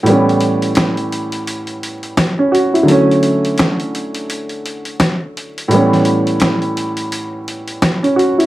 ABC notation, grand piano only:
X:1
M:4/4
L:1/16
Q:"Swing 16ths" 1/4=85
K:Amix
V:1 name="Grand piano"
z12 z C F E- | E z12 z3 | z12 z C F E |]
V:2 name="Grand piano" clef=bass
[A,,E,G,B,C]16 | [D,F,A,C]16 | [A,,E,G,B,C]16 |]